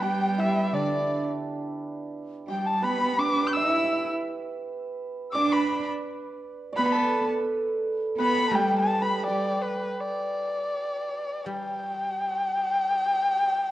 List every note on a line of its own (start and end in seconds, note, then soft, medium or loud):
0.00 0.74 G3 medium
0.00 0.69 B3 medium
0.00 2.48 G4 medium
0.00 2.37 B4 medium
0.00 0.41 G5 medium
0.00 0.75 G5 medium
0.38 3.85 E4 medium
0.38 0.76 E5 medium
0.73 1.26 D3 medium
0.73 4.47 D4 medium
0.73 1.26 D5 medium
2.48 2.85 G3 medium
2.48 5.62 G4 medium
2.48 2.67 G5 medium
2.48 2.68 G5 medium
2.66 2.84 A5 medium
2.66 2.86 A5 medium
2.82 3.20 B3 medium
2.82 2.89 B4 medium
2.82 3.57 B5 medium
2.82 3.20 B5 medium
2.90 2.97 B4 medium
2.98 3.04 B4 medium
3.05 3.12 B4 soft
3.12 3.20 B4 soft
3.19 3.57 D4 medium
3.19 3.28 B4 soft
3.19 3.48 D6 medium
3.29 3.36 B4 medium
3.36 3.43 B4 soft
3.43 5.53 B4 medium
3.43 3.54 G6 medium
3.53 4.09 E4 medium
3.53 3.63 E5 medium
3.53 4.07 E6 medium
3.53 4.09 E6 medium
3.63 3.69 E5 medium
3.70 3.76 E5 medium
3.84 3.92 E5 medium
3.93 6.22 E5 medium
5.31 5.54 D6 loud
5.31 5.37 E6 medium
5.35 5.85 D4 medium
5.35 6.72 D5 medium
5.35 5.55 D6 medium
5.52 6.76 B4 medium
5.52 5.88 B5 medium
5.52 5.89 B5 medium
6.73 7.26 B3 medium
6.73 8.18 B4 medium
6.73 9.19 D5 medium
6.73 6.87 B5 loud
6.77 7.26 B5 medium
6.87 6.94 B5 medium
6.93 9.87 A4 medium
6.93 7.29 A5 medium
8.18 8.57 B3 medium
8.18 9.02 B4 medium
8.18 8.50 B5 medium
8.18 8.57 B5 loud
8.48 10.73 G3 medium
8.48 8.55 A5 medium
8.53 9.27 G3 medium
8.53 9.27 G4 medium
8.53 9.02 G5 medium
8.53 8.78 G5 medium
8.79 9.04 A5 medium
9.00 11.75 B4 medium
9.00 9.26 B5 medium
9.25 9.79 G3 medium
9.25 12.42 G4 medium
9.25 9.64 D5 medium
9.25 9.81 G5 medium
9.62 10.01 B4 medium
10.00 11.47 D5 medium
11.46 13.65 G3 soft
11.46 13.71 G5 medium